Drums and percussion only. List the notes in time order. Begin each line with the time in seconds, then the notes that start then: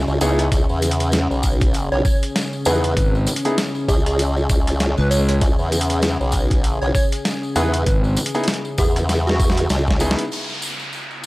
0.08 tambourine
0.21 closed hi-hat, tambourine
0.39 cross-stick, closed hi-hat, tambourine
0.52 kick, closed hi-hat, tambourine
0.69 tambourine
0.82 closed hi-hat, tambourine
0.91 closed hi-hat
1.00 closed hi-hat, tambourine
1.12 snare, closed hi-hat, tambourine
1.31 tambourine
1.43 kick, closed hi-hat, tambourine
1.61 kick, closed hi-hat, tambourine
1.74 closed hi-hat, tambourine
1.92 tambourine
2.05 kick, cross-stick, tambourine
2.23 closed hi-hat, tambourine
2.36 snare, closed hi-hat, tambourine
2.53 tambourine
2.65 closed hi-hat, tambourine
2.84 closed hi-hat, tambourine
2.97 kick, closed hi-hat, tambourine
3.15 tambourine
3.27 closed hi-hat, tambourine
3.36 closed hi-hat
3.45 closed hi-hat, tambourine
3.58 snare, closed hi-hat, tambourine
3.75 tambourine
3.89 kick, closed hi-hat, tambourine
4.06 cross-stick, closed hi-hat, tambourine
4.19 closed hi-hat, tambourine
4.37 tambourine
4.49 kick, closed hi-hat, tambourine
4.67 cross-stick, closed hi-hat, tambourine
4.80 snare, closed hi-hat, tambourine
4.98 tambourine
5.11 closed hi-hat, tambourine
5.29 cross-stick, closed hi-hat, tambourine
5.41 kick, closed hi-hat, tambourine
5.59 tambourine
5.72 closed hi-hat, tambourine
5.81 closed hi-hat
5.90 closed hi-hat, tambourine
6.02 snare, closed hi-hat, tambourine
6.21 tambourine
6.32 kick, closed hi-hat, tambourine
6.50 kick, closed hi-hat, tambourine
6.64 closed hi-hat, tambourine
6.82 tambourine
6.95 kick, cross-stick, tambourine
7.12 closed hi-hat, tambourine
7.25 snare, closed hi-hat, tambourine
7.43 tambourine
7.56 closed hi-hat, tambourine
7.73 closed hi-hat, tambourine
7.86 kick, closed hi-hat, tambourine
8.04 tambourine
8.16 closed hi-hat, tambourine
8.26 closed hi-hat
8.34 closed hi-hat, tambourine
8.44 closed hi-hat, tambourine
8.48 snare, closed hi-hat
8.54 closed hi-hat
8.65 tambourine
8.78 kick, closed hi-hat, tambourine
8.96 cross-stick, closed hi-hat, tambourine
9.09 snare, closed hi-hat, tambourine
9.27 snare, tambourine
9.40 kick, closed hi-hat, tambourine
9.50 snare
9.57 closed hi-hat, tambourine
9.69 snare, closed hi-hat, tambourine
9.87 kick, snare, tambourine
10.00 closed hi-hat, tambourine
10.11 snare
10.18 closed hi-hat, tambourine
10.32 tambourine, crash
10.49 tambourine
10.62 tambourine
10.79 tambourine
10.93 tambourine
11.11 tambourine